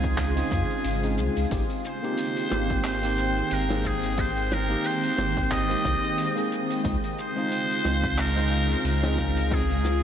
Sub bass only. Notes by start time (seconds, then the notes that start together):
Already playing: C#2
0.51 F2
0.85 G#1
1.18 C#2
1.37 C#2
1.51 G#1
2.51 G#1
3.52 G#1
5.18 G#1
5.85 C2
6.85 C#2
7.85 C#2
8.84 C#2